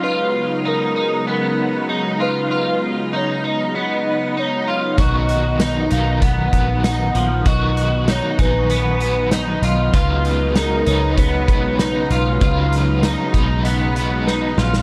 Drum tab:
HH |----------------|----------------|x-x-x-x-x-x-x-x-|x-x-x-x-x-x-x-x-|
TB |----------------|----------------|----x-------x---|----x-------x---|
SD |----------------|----------------|----o-------o---|----o-------o---|
BD |----------------|----------------|o-------o-o-----|o-----o---------|

HH |x-x-x-x-x-x-x-x-|x-x-x-x-x-x-----|
TB |----x-------x---|----x-----------|
SD |----o-------o---|----o-------o-oo|
BD |o-------o-o-----|o-----o---------|